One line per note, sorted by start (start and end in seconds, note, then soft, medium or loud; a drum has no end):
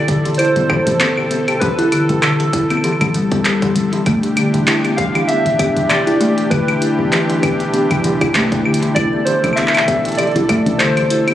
0.00 4.02 A4 loud
0.00 0.40 D5 loud
0.08 0.21 D3 medium
0.08 kick loud
0.08 closed hi-hat medium
0.25 0.36 E3 medium
0.25 closed hi-hat soft
0.35 1.65 C5 loud
0.35 closed hi-hat soft
0.39 0.52 E4 medium
0.39 closed hi-hat medium
0.39 claves medium
0.45 closed hi-hat soft
0.56 0.65 F1 medium
0.56 0.69 B3 medium
0.56 closed hi-hat soft
0.70 0.77 E3 loud
0.70 kick loud
0.70 claves medium
0.87 1.33 G1 loud
0.87 1.00 E3 loud
0.87 closed hi-hat loud
1.00 1.13 B3 medium
1.00 clap loud
1.00 closed hi-hat medium
1.17 1.23 B2 medium
1.17 claves medium
1.31 1.43 F1 medium
1.31 1.44 B3 medium
1.31 closed hi-hat medium
1.48 1.58 B2 medium
1.48 closed hi-hat soft
1.48 claves medium
1.60 1.73 G1 loud
1.60 1.74 E3 loud
1.60 2.18 B4 loud
1.60 kick loud
1.60 closed hi-hat medium
1.79 1.89 E4 loud
1.79 closed hi-hat soft
1.92 2.05 D3 medium
1.92 closed hi-hat medium
1.92 claves medium
2.09 2.19 G1 medium
2.09 2.22 B2 medium
2.09 closed hi-hat soft
2.21 2.36 D3 medium
2.21 3.10 A4 medium
2.21 clap loud
2.21 closed hi-hat medium
2.21 claves medium
2.40 2.50 E3 medium
2.40 closed hi-hat soft
2.53 2.66 E4 medium
2.53 kick loud
2.53 closed hi-hat medium
2.70 2.83 B3 medium
2.70 closed hi-hat soft
2.70 claves soft
2.77 claves soft
2.84 2.92 E3 loud
2.84 closed hi-hat medium
2.84 claves soft
2.92 claves soft
3.01 3.10 G1 loud
3.01 3.14 E3 loud
3.01 closed hi-hat soft
3.01 claves medium
3.14 3.47 G1 medium
3.14 3.27 G3 medium
3.14 closed hi-hat medium
3.32 3.45 B3 medium
3.32 kick loud
3.32 closed hi-hat soft
3.45 3.67 D2 medium
3.45 3.58 G3 medium
3.45 clap loud
3.45 closed hi-hat medium
3.45 claves soft
3.62 3.75 E3 loud
3.62 kick medium
3.62 closed hi-hat soft
3.76 3.98 G1 medium
3.76 3.89 E3 medium
3.76 closed hi-hat medium
3.93 4.03 E3 loud
3.93 closed hi-hat soft
4.06 4.18 E1 loud
4.06 11.34 E3 medium
4.06 4.19 A3 loud
4.06 11.34 D4 medium
4.06 8.92 G4 medium
4.06 kick loud
4.06 closed hi-hat medium
4.06 claves medium
4.23 4.36 B2 medium
4.23 closed hi-hat soft
4.37 4.50 D3 medium
4.37 closed hi-hat medium
4.37 claves medium
4.54 4.63 E1 medium
4.54 4.64 E3 medium
4.54 closed hi-hat soft
4.67 4.80 E4 medium
4.67 clap loud
4.67 closed hi-hat medium
4.85 4.98 B3 medium
4.85 closed hi-hat soft
4.85 claves soft
4.97 5.06 E3 loud
4.97 5.29 F5 loud
4.97 kick loud
4.97 closed hi-hat medium
5.15 5.28 E3 loud
5.15 closed hi-hat soft
5.15 claves medium
5.28 5.42 B3 medium
5.28 5.91 E5 loud
5.28 closed hi-hat medium
5.46 5.55 D1 medium
5.46 5.52 B2 medium
5.46 closed hi-hat soft
5.59 5.72 B3 medium
5.59 kick loud
5.59 closed hi-hat medium
5.59 claves medium
5.77 6.22 E1 loud
5.77 5.87 B2 medium
5.77 closed hi-hat soft
5.89 6.03 E3 loud
5.89 6.53 D5 loud
5.89 clap loud
5.89 closed hi-hat medium
5.89 claves medium
6.07 6.17 E4 loud
6.07 closed hi-hat soft
6.21 6.32 D1 medium
6.21 6.33 A3 loud
6.21 closed hi-hat medium
6.38 6.50 B2 medium
6.38 closed hi-hat soft
6.50 6.63 E1 loud
6.50 6.64 D3 medium
6.50 8.61 B4 medium
6.50 kick loud
6.50 closed hi-hat medium
6.50 claves medium
6.68 6.78 E3 medium
6.68 closed hi-hat soft
6.68 claves medium
6.82 6.95 E4 medium
6.82 closed hi-hat medium
6.99 7.08 E1 medium
6.99 7.12 B3 medium
7.12 7.20 E3 loud
7.12 clap loud
7.12 closed hi-hat medium
7.12 claves medium
7.29 7.42 E3 loud
7.29 closed hi-hat soft
7.43 7.56 B3 medium
7.43 kick loud
7.43 closed hi-hat medium
7.43 claves medium
7.60 7.66 B2 medium
7.60 closed hi-hat soft
7.73 7.86 B3 medium
7.73 closed hi-hat medium
7.90 8.00 E1 loud
7.90 8.01 B2 medium
7.90 closed hi-hat soft
7.90 claves medium
8.04 8.27 E1 medium
8.04 8.17 E3 loud
8.04 closed hi-hat medium
8.21 8.31 E4 loud
8.21 kick loud
8.21 closed hi-hat soft
8.21 claves medium
8.35 8.89 B1 medium
8.35 8.48 A3 loud
8.35 clap loud
8.35 closed hi-hat medium
8.52 8.65 B2 medium
8.52 kick medium
8.52 closed hi-hat soft
8.65 8.78 D3 medium
8.65 claves medium
8.74 closed hi-hat medium
8.83 8.93 E3 medium
8.83 closed hi-hat soft
8.95 9.08 C2 loud
8.95 9.09 E4 medium
8.95 11.34 A4 medium
8.95 9.24 D5 loud
8.95 kick loud
8.95 closed hi-hat medium
8.95 claves medium
9.13 9.26 B3 medium
9.25 9.34 E3 loud
9.25 9.58 C5 loud
9.25 closed hi-hat loud
9.44 9.53 C2 medium
9.44 9.57 E3 loud
9.44 closed hi-hat soft
9.44 claves medium
9.53 10.20 E5 loud
9.53 claves soft
9.57 9.70 B3 medium
9.57 clap medium
9.57 closed hi-hat medium
9.63 claves soft
9.68 clap medium
9.75 9.81 B2 medium
9.75 clap medium
9.75 closed hi-hat soft
9.75 claves medium
9.88 10.01 B3 medium
9.88 kick loud
9.88 closed hi-hat medium
10.05 10.15 B2 medium
10.05 closed hi-hat soft
10.09 closed hi-hat soft
10.12 closed hi-hat soft
10.15 10.81 D5 loud
10.15 closed hi-hat soft
10.19 10.31 E3 loud
10.19 closed hi-hat medium
10.19 claves medium
10.23 closed hi-hat soft
10.27 closed hi-hat soft
10.32 closed hi-hat soft
10.36 10.45 A1 medium
10.36 10.46 E4 loud
10.36 closed hi-hat soft
10.49 10.62 A3 loud
10.49 kick loud
10.49 closed hi-hat medium
10.49 claves medium
10.66 11.12 C2 loud
10.66 10.79 B2 medium
10.66 closed hi-hat soft
10.78 10.93 D3 medium
10.78 11.34 C5 loud
10.78 clap loud
10.78 closed hi-hat medium
10.97 11.07 E3 medium
10.97 closed hi-hat soft
10.97 claves medium
11.10 11.22 A1 medium
11.10 11.23 E4 medium
11.10 closed hi-hat medium
11.28 11.34 B3 medium
11.28 closed hi-hat soft
11.28 claves medium